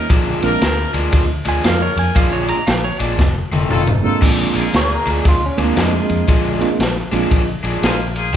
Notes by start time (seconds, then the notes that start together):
0.10 A#1 A#2 F3 G#3 D4, kick, ride
0.42 A#1 G#3 A#3 C4 D4 F4 G#4 A#4, ride
0.61 D2, snare, ride
0.94 D2 A#2 F3 G#3 D4, ride
1.12 D2, kick, ride
1.45 D2 A#2 F3 G#3 D4 G#5, ride
1.63 F2 D4 G#4 A#4 F5, snare, ride
1.82 C#5
1.96 F2 G#5, ride
2.15 A#1 A#2 F3 G#3 D4 F5, kick, ride
2.33 C#5
2.48 A#5, ride
2.67 A#1 F5, snare, ride
2.84 C#5
3.00 A#1 A#2 F3 G#3 D4 D5, ride
3.19 F1, kick, snare
3.51 F1 F2 D#3 A3 C4, high tom
3.70 F1 D#4 F4 A4, mid tom
3.87 mid tom
4.02 G#3 A#3 C4 D4 D#4 F4 A4
4.21 A#1 A#2 F3 G#3 D4, kick, crash
4.54 A#1 A#3 D4 F4 G#4, ride
4.73 D2 C#5, snare, ride
4.94 A#4
5.06 D2 A#2 F3 G#3 D4, ride
5.11 G#4
5.25 D2 F4, kick, ride
5.46 C#4
5.57 D2 A#2 F3 G#3 A#3 C4 D4 F4, ride
5.64 A#3
5.75 F2 A#3 D4 F4 G#4, snare, ride
5.81 G#3
5.99 G#3
6.09 F2, ride
6.28 A#1 A#2 F3 G#3 D4, kick, ride
6.60 G#3 A#3 C4 D4 F4, ride
6.79 A#1, snare, ride
7.12 A#1 A#2 F3 G#3 A#3 C4 D4 F4, ride
7.31 A#1, kick, ride
7.63 A#1 A#2 F3 G#3 D4, ride
7.82 A#1 A#3 D4 F4 G#4, snare, ride
8.14 A#3 D4 F4 G#4, ride
8.33 D#3